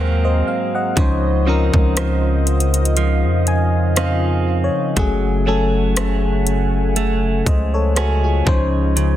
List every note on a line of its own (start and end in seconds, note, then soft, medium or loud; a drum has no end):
0.00 0.43 D#2 medium
0.00 0.97 G#2 medium
0.00 1.08 F#3 medium
0.00 1.08 A#3 medium
0.00 0.93 C4 medium
0.00 1.47 C4 medium
0.00 0.93 G#4 medium
0.00 0.93 A#4 medium
0.00 0.95 F5 medium
0.24 0.46 C5 medium
0.24 0.46 D#5 medium
0.47 0.73 F5 medium
0.75 1.22 D#5 medium
0.75 1.22 F#5 medium
0.96 1.71 C#2 loud
0.96 8.43 C#3 medium
0.96 4.97 C#3 medium
0.96 1.38 F3 medium
0.96 1.39 C#4 medium
0.96 1.39 D#4 medium
0.96 4.93 F4 medium
0.96 2.95 C5 medium
0.96 1.40 C5 medium
0.96 4.93 D#5 medium
0.96 kick loud
0.96 closed hi-hat medium
1.46 3.12 F3 medium
1.46 1.96 F3 medium
1.46 3.96 C4 medium
1.46 3.12 C#4 medium
1.46 3.97 D#4 medium
1.46 3.13 D#4 medium
1.46 3.13 A#4 medium
1.74 3.25 C#2 loud
1.74 kick medium
1.97 2.96 F3 medium
1.97 cross-stick loud
1.97 closed hi-hat medium
2.47 closed hi-hat medium
2.60 closed hi-hat medium
2.74 closed hi-hat medium
2.85 closed hi-hat medium
2.97 3.96 F3 medium
2.97 4.95 F5 medium
2.97 closed hi-hat medium
3.24 4.70 F2 loud
3.47 3.94 G#5 medium
3.47 closed hi-hat medium
3.96 4.96 F3 medium
3.96 5.08 C4 medium
3.96 5.08 D#4 medium
3.96 4.60 F5 medium
3.96 cross-stick loud
3.96 closed hi-hat medium
4.64 4.95 C#5 medium
4.96 7.43 F#1 loud
4.96 5.38 F#3 medium
4.96 8.58 F#3 medium
4.96 8.43 A3 medium
4.96 5.39 A3 medium
4.96 5.39 C#4 medium
4.96 5.40 G#4 medium
4.96 8.43 F#5 medium
4.96 8.43 G#5 medium
4.96 kick loud
4.96 closed hi-hat medium
5.46 7.12 F#3 medium
5.46 7.12 A3 medium
5.46 5.96 A3 medium
5.46 7.97 C#4 medium
5.46 7.12 C#4 medium
5.46 7.97 G#4 medium
5.46 6.98 A4 medium
5.97 6.95 A3 medium
5.97 cross-stick loud
5.97 closed hi-hat medium
6.47 closed hi-hat medium
6.96 7.95 A3 medium
6.96 closed hi-hat medium
7.46 8.42 C#2 loud
7.46 7.73 C5 medium
7.46 7.73 D#5 medium
7.46 kick medium
7.46 closed hi-hat medium
7.74 7.96 A4 medium
7.74 7.96 C#5 medium
7.96 8.57 A3 medium
7.96 9.17 C#4 medium
7.96 8.23 F#4 medium
7.96 9.17 G#4 medium
7.96 8.22 A4 medium
7.96 cross-stick loud
7.96 closed hi-hat medium
8.24 8.72 F4 soft
8.24 8.71 G#4 medium
8.45 9.17 C#2 loud
8.45 8.95 C#3 medium
8.45 9.17 C#3 medium
8.45 8.53 E3 medium
8.45 9.17 C#4 medium
8.45 9.17 D#4 medium
8.45 9.17 F4 medium
8.45 9.17 G#4 medium
8.45 9.17 C5 loud
8.45 9.17 D#5 medium
8.45 kick loud
8.52 9.17 F3 medium
8.96 9.17 C#3 medium
8.96 closed hi-hat medium